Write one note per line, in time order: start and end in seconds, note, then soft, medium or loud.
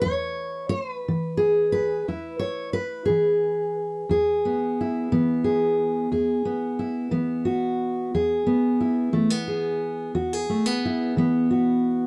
0.00 1.37 E4 soft
0.00 0.69 C#5 loud
0.05 0.65 E2 medium
0.69 0.92 C5 medium
0.92 1.71 B4 medium
1.08 1.68 E3 medium
1.37 2.06 G#4 medium
1.72 2.39 B4 medium
2.08 2.68 E2 medium
2.08 3.05 E4 medium
2.39 2.73 C#5 medium
2.73 3.74 B4 medium
3.06 3.69 E3 medium
3.06 4.09 G#4 medium
4.09 4.69 E2 medium
4.09 5.44 G#4 medium
4.45 5.12 B3 soft
4.81 6.78 E4 soft
5.12 5.71 E3 medium
5.12 6.45 B3 medium
5.44 6.12 G#4 medium
6.12 6.71 E2 medium
6.12 7.45 G#4 medium
6.45 7.11 B3 soft
6.79 8.08 E4 medium
7.11 7.71 E3 medium
7.11 8.46 B3 medium
7.45 8.12 F#4 medium
8.14 8.73 E2 medium
8.14 9.46 G#4 medium
8.47 9.12 B3 medium
8.80 10.81 E4 soft
9.13 9.73 E3 medium
9.13 9.30 A3 medium
9.30 10.47 B3 soft
9.48 10.14 G#4 medium
10.15 10.74 E2 medium
10.15 10.33 F#4 medium
10.33 11.49 G#4 soft
10.50 10.66 A3 medium
10.66 11.15 B3 medium
10.85 12.07 E4 medium
11.17 11.75 E3 medium
11.17 12.07 B3 medium
11.51 12.07 F#4 soft